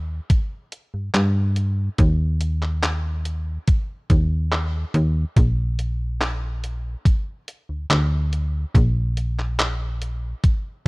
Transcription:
Already playing: D#2
0.30 kick, closed hi-hat
0.72 closed hi-hat
0.94 G2
1.14 G2, clap, closed hi-hat
1.56 closed hi-hat
1.98 D#2, kick, closed hi-hat
2.41 closed hi-hat
2.62 clap
2.83 clap, closed hi-hat
3.25 closed hi-hat
3.67 kick, closed hi-hat
4.10 D#2, kick, closed hi-hat
4.52 clap, closed hi-hat
4.94 D#2, closed hi-hat
5.36 A#1, kick, closed hi-hat
5.79 closed hi-hat
6.21 clap, closed hi-hat
6.64 closed hi-hat
7.06 kick, closed hi-hat
7.48 closed hi-hat
7.69 D2
7.90 D2, clap, closed hi-hat
8.33 closed hi-hat
8.74 A#1, kick, closed hi-hat
9.17 closed hi-hat
9.39 clap
9.59 clap, closed hi-hat
10.02 closed hi-hat
10.44 kick, closed hi-hat

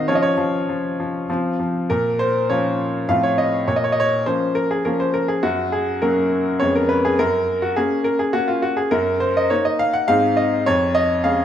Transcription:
Already playing: D#3 C4 F#4 D#5
0.08 F3 C#4 F4 C#5
0.15 D#5
0.22 C#5
0.38 F3
0.69 F3
1.00 F3
1.30 F3 C4 F4
1.60 F3
1.90 A#2 A#4
2.19 C5
2.50 F3 C#4 F4 C#5
3.09 A2 F3 C4 F4 F5
3.23 C#5
3.38 D#5
3.68 A#2 C#5
3.76 D#5
3.84 C#5
3.92 D#5
4.00 C#5
4.26 F3 A#3 C#4 C5
4.55 A#4
4.71 G#4
4.85 F3 A#3 C#4 A#4
5.00 C5
5.14 A#4
5.28 G#4
5.43 F#2 F#4
5.72 G#4
6.02 F#3 A#3 C#4 A#4
6.60 F2 G#3 B3 C#4 C#5
6.75 A#4
6.89 B4
7.05 G#4
7.19 F#2 A#4
7.62 F#4
7.76 A#3 C#4 G#4
8.04 A#4
8.19 G#4
8.33 A#3 C#4 F#4
8.48 F4
8.62 F#4
8.77 G#4
8.91 F#2 A#4
9.20 C5
9.37 D#5
9.50 A#3 D#4 C#5
9.65 D#5
9.79 F5
9.93 F#5
10.08 G#2 G#3 C4 D#4 F5
10.37 D#5
10.66 F2 C#5
10.95 D#5
11.24 G#3 C#4 G#4 F5

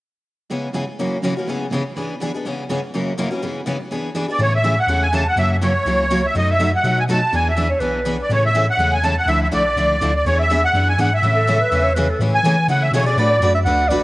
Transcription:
0.50 C#3 E3 G#3 B3 C#4 E4 G#4
0.74 C#3 E3 G#3 B3 C#4 E4 G#4
0.99 F#2 C#3 E3 F#3 A#3 C#4 E4 F#4 A#4
1.22 F#2 C#3 E3 F#3 A#3 C#4 E4 F#4 A#4
1.37 E3 A#3 C#4 F#4
1.47 C#3 E3 G#3 B3 C#4 E4 G#4
1.71 C#3 E3 G#3 B3 C#4 E4 G#4
1.96 E3 B3 D4 G#4 B4
2.21 E3 B3 D4 G#4 B4
2.34 B3 D4 G#4
2.45 C#3 E3 G#3 B3 C#4 E4 G#4
2.69 C#3 E3 G#3 B3 C#4 E4 G#4
2.94 F#2 C#3 E3 F#3 A#3 C#4 E4 F#4 A#4
3.18 F#2 C#3 E3 F#3 A#3 C#4 E4 F#4 A#4
3.31 E3 A#3 C#4 F#4
3.42 C#3 E3 G#3 B3 C#4 E4 G#4
3.66 C#3 E3 G#3 B3 C#4 E4 G#4
3.91 E3 B3 D4 G#4 B4
4.15 E3 B3 D4 G#4 B4
4.28 B3 D4 G#4 D5
4.38 A2 C#3 E3 G#3 A3 C#4 E4 G#4 A4 C#5
4.55 E5
4.64 C#3 E3 G#3 A3 C#4 E4 G#4 A4
4.79 F#5
4.87 E2 C#3 E3 G#3 A3 C#4 E4 G#4 A4
5.02 G#5
5.13 C#3 E3 G#3 A3 C#4 E4 G#4 A4 A5
5.28 F#5
5.36 F#2 C#3 E3 F#3 A#3 C#4 E4 F#4 A#4 E5
5.52 E5
5.62 C#3 E3 F#3 A#3 C#4 E4 F#4 A#4 C#5
5.85 C#2 C#3 E3 F#3 A#3 C#4 E4 F#4 A#4
6.10 C#3 E3 F#3 A#3 C#4 E4 F#4 A#4
6.26 E5
6.34 F#2 B2 F#3 A3 B3 D#4 F#4 A4 D#5
6.50 E5
6.59 B2 F#3 A3 B3 D#4 F#4 A4
6.75 F#5
6.84 B2 F#3 A3 B3 D#4 F#4 A4
7.00 G#5
7.09 B2 F#3 A3 B3 D#4 F#4 A4 A5
7.32 E2 E3 B3 D4 G#4 B4 G#5
7.49 E5
7.57 E3 B3 D4 G#4 B4
7.70 C#5
7.80 B1 E3 B3 D4 G#4 B4
8.05 E3 B3 D4 G#4 B4
8.22 D5
8.29 A2 C#3 E3 G#3 A3 C#4 E4 G#4 A4 C#5
8.46 E5
8.55 C#3 E3 G#3 A3 C#4 E4 G#4 A4
8.70 F#5
8.78 E2 C#3 E3 G#3 A3 C#4 E4 G#4 A4
8.93 G#5
9.03 C#3 E3 G#3 A3 C#4 E4 G#4 A4 A5
9.18 F#5
9.26 D2 D3 F3 A3 E4 A4 E5
9.43 E5
9.51 B1 D3 F3 A3 E4 A4 D5
9.76 C#2 D3 F3 A3 E4 A4
10.01 D2 D3 F3 A3 E4 A4
10.16 D5
10.25 E2 E3 B3 D4 G#4 B4 C#5
10.40 E5
10.50 E3 B3 D4 G#4 B4
10.64 F#5
10.73 F#2 E3 B3 D4 G#4 B4
10.89 G#5
10.98 G#2 E3 B3 D4 G#4 B4 F#5
11.14 E5
11.22 A2 C#3 E3 G#3 A3 C#4 E4 G#4 A4
11.36 A4
11.47 C#3 E3 G#3 A3 C#4 E4 G#4 A4
11.60 B4
11.71 E2 C#3 E3 G#3 A3 C#4 E4 G#4 A4
11.84 C#5
11.95 C#3 E3 G#3 A3 C#4 E4 G#4 A4 B4
12.09 A4
12.19 A2 C#3 E3 G#3 A3 C#4 E4 G#4 A4
12.35 G#5
12.43 C#3 E3 G#3 A3 C#4 E4 G#4 A4
12.68 C#3 E3 G#3 A3 C#4 E4 G#4 A4 F#5
12.82 E5
12.91 B2 C#3 E3 G#3 A3 C#4 E4 G#4 A4 C#5
13.06 A3 C#4 G#4 D5
13.16 A2 A3 D4 F#4 B4
13.30 D5
13.40 F#2 A3 D4 F#4 B4
13.54 E5
13.65 D2 A3 D4 F#4 B4 F#5
13.88 A1 A3 D4 F#4 B4 D5

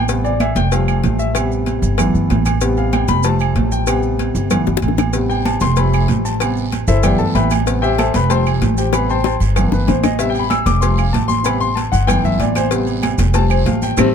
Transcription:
Already playing: A1
0.08 C3 G3 B3, cowbell, high conga, maracas
0.24 D5, high conga, low agogo, maracas
0.40 E5, cowbell, high conga, low agogo, claves, maracas
0.55 F1 G5, cowbell, high conga, maracas
0.72 F3 G3 A3 F5, cowbell, high conga, low agogo, maracas
0.88 high conga, low agogo, claves, maracas
1.04 A1, cowbell, high conga, maracas
1.19 E5, maracas
1.35 C3 G3 B3, cowbell, high conga, low agogo, claves, maracas
1.51 high conga, maracas
1.66 cowbell, high conga, low agogo, maracas
1.82 G1, high conga, low agogo, maracas
1.98 E3 A3 B3, cowbell, high conga, low conga, low agogo, claves, maracas
2.14 G1, high conga, maracas
2.30 A1, cowbell, high conga, low timbale, low agogo, maracas
2.46 cowbell, high conga, low agogo, claves, maracas
2.61 C3 G3 B3, cowbell, high conga, maracas
2.77 F5, high conga, low agogo, maracas
2.93 G5, cowbell, high conga, low agogo, claves, maracas
3.08 F1 B5, cowbell, high conga, maracas
3.23 F3 G3 A3 A5, cowbell, low agogo, maracas
3.39 high conga, low agogo, claves, maracas
3.55 A1, cowbell, high conga, low timbale, maracas
3.72 G5, maracas
3.87 C3 G3 B3, cowbell, high conga, low agogo, claves, maracas
4.03 high conga, maracas
4.19 cowbell, high conga, low agogo, maracas
4.35 G1, high conga, low agogo, maracas
4.50 E3 A3 B3, cowbell, high conga, low conga, low agogo, claves, maracas
4.66 G1, high bongo, high conga, maracas
4.77 high bongo
4.82 A1, cowbell, high conga, low agogo, maracas
4.88 low bongo
4.98 cowbell, low bongo, high conga, low agogo, claves, maracas
5.13 C3 G3 B3, cowbell, high conga, long guiro, maracas
5.30 G5, high conga, low agogo, maracas
5.45 A5, cowbell, high conga, low agogo, short guiro, claves, maracas
5.60 F1 C6, cowbell, high conga, short guiro, maracas
5.76 F3 G3 A3 B5, cowbell, high conga, low agogo, long guiro, maracas
5.93 high conga, low agogo, claves, maracas
6.08 A1, cowbell, high conga, short guiro, maracas
6.25 A5, short guiro, maracas
6.40 C3 G3 B3, cowbell, high conga, low agogo, long guiro, claves, maracas
6.57 high conga, maracas
6.72 cowbell, high conga, low agogo, short guiro, maracas
6.87 G1 E4 A4 C5 E5, low agogo, short guiro, maracas
7.03 E3 A3 B3 G4 D5 E5 G5, cowbell, high conga, low conga, low agogo, long guiro, claves, maracas
7.18 G1 A4 A5, high conga, low conga, maracas
7.35 A1 B4 E5 G5 B5, cowbell, high conga, low agogo, short guiro, maracas
7.50 cowbell, high conga, low agogo, short guiro, claves, maracas
7.66 C3 G3 B3, cowbell, high conga, long guiro, maracas
7.82 G4 C5 E5 G5, low agogo, maracas
7.98 A4 C5 E5 A5, cowbell, high conga, low agogo, short guiro, claves, maracas
8.14 F1 B4 B5, cowbell, high conga, short guiro, maracas
8.29 F3 G3 A3 C5 G5 A5 C6, cowbell, high conga, low agogo, long guiro, maracas
8.46 high conga, low agogo, claves, maracas
8.62 A1, cowbell, high conga, short guiro, maracas
8.77 G4 C5 G5, short guiro, maracas
8.93 C3 G3 B3 B4 B5, cowbell, high bongo, low agogo, long guiro, claves, maracas
9.10 C5 G5 A5 C6, high conga, maracas
9.24 C5 G5 A5 C6, cowbell, high bongo, high conga, low agogo, short guiro, maracas
9.40 G1, high conga, low agogo, short guiro, maracas
9.56 E3 A3 B3, cowbell, high conga, low conga, low agogo, long guiro, claves, maracas
9.69 G1 A#4, low bongo, high conga
9.73 B4, maracas
9.87 A1 C5, cowbell, low bongo, high conga, low agogo, short guiro, maracas
10.03 D#5, cowbell, low bongo, high conga, low agogo, short guiro, claves, maracas
10.19 C3 G3 B3 E5, cowbell, long guiro, maracas
10.30 G5
10.35 high conga, low agogo, maracas
10.39 B5
10.50 E6, cowbell, high conga, low agogo, short guiro, claves, maracas
10.66 F1 D6, cowbell, high conga, short guiro, maracas
10.80 F3 G3 A3 C6, cowbell, high conga, low agogo, long guiro, maracas
10.98 F5, high conga, low agogo, claves, maracas
11.13 A1 A5, cowbell, high conga, short guiro, maracas
11.28 C6, high conga, short guiro, maracas
11.44 C3 G3 B3 B5, cowbell, high conga, low agogo, long guiro, claves, maracas
11.61 C6, high conga, maracas
11.75 A5, cowbell, high conga, low agogo, short guiro, maracas
11.92 G1 F#5, high conga, low agogo, short guiro, maracas
12.07 E3 A3 B3 G5, cowbell, high conga, low conga, low agogo, long guiro, claves, maracas
12.24 G1 E5, high conga, low conga, maracas
12.38 A1 D5, cowbell, high conga, low agogo, short guiro, maracas
12.55 C5, cowbell, high conga, low agogo, short guiro, claves, maracas
12.71 C3 G3 B3, cowbell, high conga, long guiro, maracas
12.87 low agogo, maracas
13.02 cowbell, high conga, low agogo, short guiro, claves, maracas
13.18 F1, cowbell, high conga, short guiro, maracas
13.34 F3 G3 A3 A5, cowbell, high conga, low agogo, long guiro, maracas
13.50 C5, high conga, low agogo, claves, maracas
13.65 A1 F5, cowbell, high conga, short guiro, maracas
13.82 G5, high conga, short guiro, maracas
13.97 A1 G3 A3 C4, cowbell, high conga, high timbale, long guiro, claves, maracas

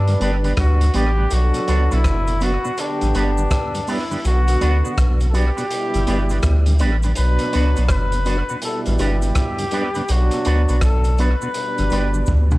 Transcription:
Already playing: G2 G3 D4 B4
0.07 G2 D3, closed hi-hat
0.20 G1 G3 B3 D4 G4 B4, closed hi-hat
0.43 G2 D3 B3 D4 G4 B4, closed hi-hat
0.57 D2 F#4, kick, cross-stick, closed hi-hat
0.80 G2 D3, closed hi-hat
0.94 A1 G3 B3 D4 G4 B4, closed hi-hat
1.17 G2 D3 B3 D4 G4 B4
1.30 B1 F#3 D4 F#4 A4, closed hi-hat, cabasa
1.54 B2, closed hi-hat, cabasa
1.68 C#2 F#3 B3 D4 F#4 B4, closed hi-hat, cabasa
1.91 B1 B2 B3 D4 E4 F#4 B4, closed hi-hat, cabasa
2.04 F#1, kick, cross-stick, closed hi-hat, cabasa
2.27 B2, closed hi-hat, cabasa
2.41 F#3 B3 D4 F#4 B4, closed hi-hat, cabasa
2.64 B2 B3 D4 F#4 B4, cabasa
2.76 D3 B3 D4 G4, closed hi-hat, cabasa
3.01 A1 G2 D3, closed hi-hat, cabasa
3.14 G1 G3 B3 D4 G4 B4, closed hi-hat, cabasa
3.38 G2 D3, cabasa
3.51 kick, cross-stick, closed hi-hat, cabasa
3.75 G2 D3, closed hi-hat, cabasa
3.87 G3 B3 D4 E4 G4 B4, open hi-hat, cabasa
4.11 G2 D3 B3 D4 G4 B4, cabasa
4.23 B1 D3 B3 F#4, closed hi-hat, cabasa
4.27 F#4
4.47 B2, closed hi-hat, cabasa
4.61 D2 F#3 B3 D4 F#4 B4, closed hi-hat, cabasa
4.84 B2 B3 D4 F#4 B4, cabasa
4.98 B1, kick, cross-stick, closed hi-hat, cabasa
5.20 B2, closed hi-hat, cabasa
5.30 F#3 B3 D4 F#4 A4
5.34 D4 G4 B4, closed hi-hat, cabasa
5.57 B2 B3 D4 F#4 B4, closed hi-hat, cabasa
5.71 B2 G3 E4, closed hi-hat, cabasa
5.94 G1 G2 D3, closed hi-hat, cabasa
6.07 G1 G3 B3 D4 G4 B4, closed hi-hat, cabasa
6.29 G2 D3 B3 D4 G4 B4, closed hi-hat, cabasa
6.43 D2, kick, cross-stick, closed hi-hat, cabasa
6.66 G2 D3, closed hi-hat, cabasa
6.79 A1 G3 B3 D4 G4 B4, closed hi-hat, cabasa
7.03 G2 D3 B3 D4 G4 B4, closed hi-hat, cabasa
7.15 B1 B2 F#3 D4 B4, closed hi-hat, cabasa
7.39 B2, closed hi-hat, cabasa
7.53 C#2 F#3 B3 D4 F#4 B4, closed hi-hat, cabasa
7.76 B1 B2 B3 D4 F#4 B4, closed hi-hat, cabasa
7.89 F#1 B4, kick, cross-stick, closed hi-hat, cabasa
8.12 B2, closed hi-hat, cabasa
8.25 F#3 B3 D4 F#4 B4, closed hi-hat, cabasa
8.49 B2 B3 D4 F#4 B4, cabasa
8.61 B2 G3 E4 A4, closed hi-hat, cabasa
8.86 A1 G2 D3, closed hi-hat, cabasa
8.99 G1 G3 B3 D4 G4 B4, closed hi-hat, cabasa
9.22 G2 D3, closed hi-hat, cabasa
9.35 kick, cross-stick, closed hi-hat, cabasa
9.58 G2 D3, closed hi-hat, cabasa
9.71 G3 B3 D4 G4 B4, closed hi-hat, cabasa
9.95 G2 D3 B3 D4 G4 B4, closed hi-hat, cabasa
10.08 B1 B2 F#3 D4 F#4, closed hi-hat, cabasa
10.31 B2, closed hi-hat, cabasa
10.45 D2 F#3 B3 D4 F#4 B4, closed hi-hat, cabasa
10.69 B1 B2 B3 D4 F#4 B4, closed hi-hat, cabasa
10.81 B1 A4, kick, cross-stick, closed hi-hat, cabasa
11.04 B2, closed hi-hat, cabasa
11.18 F#3 B3 D4 F#4 B4, closed hi-hat, cabasa
11.42 B2 B3 D4 F#4 B4, cabasa
11.54 B2 G3 D4, closed hi-hat, cabasa
11.78 G1 G2 D3, closed hi-hat, cabasa
11.90 G1 G3 B3 D4 G4 B4, closed hi-hat, cabasa
12.14 G2 D3, cabasa
12.26 D2, kick, high tom, cabasa
12.51 G2 D3, mid tom, cabasa

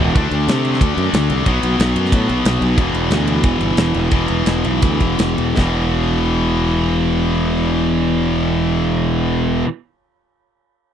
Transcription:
0.00 E1 E2 B2 E3 E4 B4 F#5 G5
0.15 D2 D3 A3 D4, kick, ride
0.31 D2, ride
0.48 C3, snare, ride
0.65 ride
0.74 snare
0.81 D2, kick, ride
0.97 F#2, ride
1.13 D2, snare, ride
1.30 C2, ride
1.46 B1 B2 F#3 B3, kick, ride
1.63 B1, ride
1.79 B1, snare, ride
1.96 F#2, ride
2.05 snare
2.12 A2, kick, ride
2.29 B1, ride
2.45 B1, snare, ride
2.61 B1, ride
2.76 E1 E2 B2 E3, kick, ride
2.94 E1, ride
3.11 D2, snare, ride
3.27 ride
3.43 E1, kick, ride
3.61 G1, ride
3.77 E1, snare, ride
3.94 E1, ride
4.11 E1 E2 B2 E3, kick, ride
4.28 E1, ride
4.46 E1, snare, ride
4.64 B1, ride
4.82 D2, kick, ride
5.00 E1, kick, ride
5.19 E1, snare, ride
5.38 E1, ride
5.56 E1 E2 B2 E3, kick, snare

